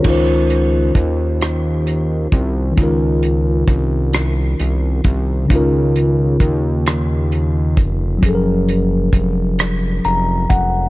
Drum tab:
CC |x-----|------|------|------|
HH |-xxxxx|xxxxxx|xxxxxx|xxxxxx|
SD |---r--|---r--|---r--|---r--|
BD |o-o--o|o-o--o|o-o--o|o-o--o|